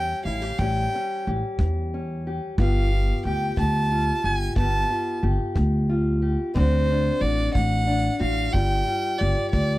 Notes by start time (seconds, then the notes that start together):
Already playing: E2 E3 G3 C#4 G4 G5
0.25 A1 E4 F5
0.42 G4
0.58 A1 A2 G3 C#4 G4 G5, kick
0.95 C#4
1.27 A1 G4
1.59 E2 E3, kick
1.94 C#4
2.27 G4
2.58 G1 G2 B3 F4 G4 F5, kick
2.94 F4
3.25 D2 G4 G5
3.57 D2 D3 A5, kick
3.91 F4
4.24 G1 G4 G#5
4.56 G1 G2 B3 F4 G4 A5, kick
4.90 F4
5.23 G1 G4
5.55 D2 D3, kick
5.89 F4
6.22 G4
6.54 D2 C4 D4 F#4 C5, kick
6.91 D4
7.21 A1 F#4 D5
7.54 A1 D3 F#5, kick
7.87 D4
8.20 A1 F#4 F5
8.52 G1 G2 G3 F4 G4 G5, kick
8.87 F4
9.18 G1 G4 D5
9.50 D2 G2 D5, kick